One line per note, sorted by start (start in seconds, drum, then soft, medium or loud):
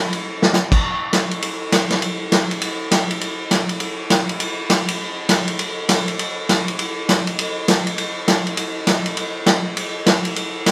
0.13 ride soft
0.42 snare medium
0.53 snare medium
0.53 hi-hat pedal medium
0.72 kick medium
0.72 crash medium
1.13 snare medium
1.13 hi-hat pedal medium
1.13 ride medium
1.31 ride soft
1.42 ride medium
1.72 snare medium
1.72 hi-hat pedal medium
1.72 ride medium
1.90 snare soft
1.90 ride medium
2.02 ride medium
2.32 snare medium
2.32 hi-hat pedal medium
2.32 ride medium
2.51 ride soft
2.61 ride medium
2.91 snare medium
2.91 hi-hat pedal medium
2.91 ride medium
3.10 ride medium
3.21 ride medium
3.51 snare medium
3.51 hi-hat pedal medium
3.51 ride medium
3.69 ride soft
3.80 ride medium
4.10 snare medium
4.10 hi-hat pedal medium
4.10 ride medium
4.29 ride medium
4.40 ride medium
4.70 snare medium
4.70 hi-hat pedal medium
4.70 ride medium
4.88 ride medium
5.29 snare medium
5.29 hi-hat pedal medium
5.29 ride medium
5.48 ride medium
5.59 ride medium
5.89 snare medium
5.89 hi-hat pedal medium
5.89 ride medium
6.08 ride soft
6.19 ride medium
6.49 snare medium
6.49 hi-hat pedal medium
6.49 ride medium
6.68 ride medium
6.79 ride medium
7.09 snare medium
7.09 hi-hat pedal medium
7.09 ride medium
7.27 ride soft
7.39 ride medium
7.68 snare medium
7.68 hi-hat pedal medium
7.68 ride medium
7.87 ride medium
7.98 ride medium
8.28 snare medium
8.28 hi-hat pedal medium
8.28 ride medium
8.47 ride soft
8.57 ride medium
8.87 snare medium
8.87 hi-hat pedal medium
8.87 ride medium
9.06 ride medium
9.17 ride medium
9.46 snare medium
9.46 hi-hat pedal medium
9.46 ride medium
9.77 ride medium
10.06 snare medium
10.06 hi-hat pedal soft
10.06 ride medium
10.25 ride medium
10.36 ride medium
10.66 snare medium
10.66 hi-hat pedal medium
10.66 ride medium